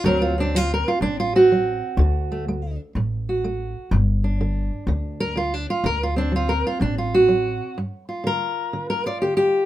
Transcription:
0.04 0.82 D2 loud
0.04 0.50 D3 medium
0.04 0.54 F#3 soft
0.04 0.38 C4 soft
0.04 0.21 D4 soft
0.04 0.21 A#4 loud
0.22 0.37 F4 medium
0.38 1.34 C4 soft
0.38 0.56 D4 medium
0.55 0.99 F#3 medium
0.55 0.71 F4 medium
0.74 0.87 A#4 medium
0.88 1.02 F4 medium
1.01 1.79 A1 medium
1.01 1.47 A2 medium
1.01 1.18 D4 medium
1.20 1.35 F4 medium
1.36 1.97 C4 soft
1.36 2.80 F#4 medium
1.52 1.96 F#3 medium
1.97 2.76 D2 loud
1.97 2.44 D3 medium
2.32 2.47 A3 soft
2.48 2.92 A3 medium
2.95 3.73 A1 medium
2.95 3.41 A2 medium
3.29 3.91 F#4 soft
3.44 3.89 A3 medium
3.91 4.69 G1 loud
3.91 4.37 G2 medium
4.24 5.37 D4 soft
4.41 4.85 D3 medium
4.87 5.65 D2 medium
4.87 5.33 D3 medium
5.20 5.36 A#4 loud
5.36 5.81 D3 medium
5.36 5.54 F4 medium
5.54 5.69 D4 medium
5.70 5.85 F4 medium
5.84 6.62 D2 loud
5.84 6.29 D3 medium
5.84 6.01 A#4 medium
6.03 6.18 F4 medium
6.16 7.75 C4 soft
6.16 6.33 D4 medium
6.32 6.77 F#3 medium
6.36 6.50 F4 medium
6.49 6.65 A#4 medium
6.67 6.81 F4 medium
6.80 7.58 A1 medium
6.80 7.25 A2 medium
6.80 6.97 D4 medium
6.98 7.14 F4 medium
7.14 7.78 F#4 medium
7.28 7.73 F#3 medium
7.78 8.22 G2 medium
8.09 9.05 F4 soft
8.24 8.69 D3 medium
8.24 8.89 A#4 medium
8.73 9.18 D3 medium
8.90 9.06 A#4 medium
9.06 9.65 F4 soft
9.06 9.21 D5 medium
9.22 9.65 D3 medium
9.22 9.36 G4 medium
9.37 9.65 G4 medium

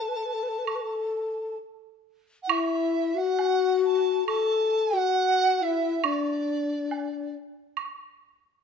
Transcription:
0.00 0.10 A4 medium
0.00 1.58 A5 medium
0.09 0.18 B4 medium
0.16 0.27 A4 soft
0.25 0.35 B4 medium
0.34 0.45 A4 medium
0.43 0.50 B4 medium
0.49 0.60 A4 medium
0.58 0.67 B4 medium
0.65 0.77 A4 medium
0.65 high woodblock soft
0.75 0.83 B4 soft
0.81 1.56 A4 medium
2.42 2.51 F#5 medium
2.48 3.16 E4 medium
2.48 3.18 E5 medium
2.48 high woodblock medium
3.15 4.26 F#4 medium
3.15 3.83 F#5 medium
3.39 low woodblock soft
3.84 4.25 A5 medium
4.26 4.95 A4 medium
4.26 4.97 A5 medium
4.26 high woodblock soft
4.93 5.63 F#4 medium
4.93 5.63 F#5 medium
5.61 6.06 E4 medium
5.61 6.06 E5 medium
6.04 7.35 D4 medium
6.04 7.35 D5 medium
6.04 high woodblock soft
6.91 low woodblock soft
7.77 high woodblock soft

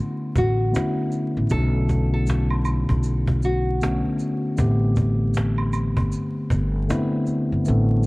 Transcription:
0.00 0.71 D3 medium
0.00 0.72 A3 medium
0.00 0.73 B3 medium
0.00 0.73 C#4 medium
0.00 0.74 E4 medium
0.00 0.32 F#4 medium
0.35 0.72 A1 medium
0.35 1.48 F#4 medium
0.35 cajon bass medium
0.35 maracas medium
0.71 1.35 D3 medium
0.71 1.35 A3 medium
0.71 1.35 B3 medium
0.71 1.36 C#4 medium
0.71 1.36 E4 medium
0.71 maracas medium
0.76 cajon slap loud
1.12 cajon slap soft
1.12 maracas soft
1.37 1.51 A1 medium
1.37 cajon slap soft
1.50 2.86 B1 loud
1.50 2.69 D3 medium
1.50 2.69 A3 medium
1.50 2.09 A4 loud
1.50 cajon bass loud
1.50 maracas medium
1.54 2.70 B3 medium
1.54 2.70 C#4 medium
1.54 2.70 F#4 medium
1.89 cajon bass medium
1.89 maracas soft
2.14 3.40 A4 medium
2.27 cajon slap loud
2.27 maracas medium
2.50 high woodblock medium
2.64 cajon slap soft
2.64 high woodblock medium
2.64 maracas medium
2.89 4.01 B1 medium
2.89 cajon bass medium
2.89 high woodblock soft
3.03 cajon slap soft
3.03 maracas medium
3.28 cajon bass medium
3.40 cajon slap soft
3.40 maracas soft
3.45 4.55 F#4 medium
3.81 4.44 D3 medium
3.81 4.44 A3 medium
3.81 4.44 B3 medium
3.81 4.45 C#4 medium
3.81 4.45 F#4 medium
3.81 cajon slap loud
3.81 maracas medium
4.19 cajon slap soft
4.19 maracas soft
4.44 cajon slap soft
4.57 5.93 A1 loud
4.57 5.75 D3 medium
4.57 5.75 A3 medium
4.57 5.76 B3 medium
4.57 5.76 C4 medium
4.57 5.76 G4 loud
4.57 cajon bass loud
4.57 maracas medium
4.96 cajon bass medium
4.96 maracas soft
5.34 cajon slap loud
5.34 maracas medium
5.58 high woodblock medium
5.73 cajon slap soft
5.73 high woodblock medium
5.73 maracas medium
5.97 6.12 G1 medium
5.97 cajon bass medium
5.97 high woodblock soft
6.10 cajon slap soft
6.10 maracas medium
6.50 6.87 G1 medium
6.50 cajon bass medium
6.50 maracas medium
6.89 7.51 D3 loud
6.89 7.51 A3 medium
6.89 7.52 B3 medium
6.89 7.52 C4 medium
6.89 7.52 E4 medium
6.89 cajon slap loud
6.89 maracas medium
7.27 cajon slap soft
7.27 maracas soft
7.51 7.66 G1 medium
7.51 cajon slap soft
7.65 8.06 A1 loud
7.65 8.06 D3 medium
7.65 8.06 A3 medium
7.65 8.06 B3 medium
7.65 8.06 C4 medium
7.65 8.06 A4 medium
7.65 cajon slap soft
7.65 maracas medium
8.03 maracas soft

